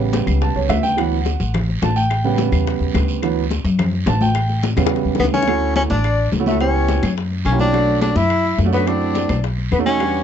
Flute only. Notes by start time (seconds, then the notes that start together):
5.20 B4
5.34 C#5
5.76 C#5
5.90 D5
6.47 A4
6.61 C#5
7.45 C#5
7.59 D5
8.02 D5
8.16 E5
8.74 B4
8.87 D5
9.73 B4
9.87 C#5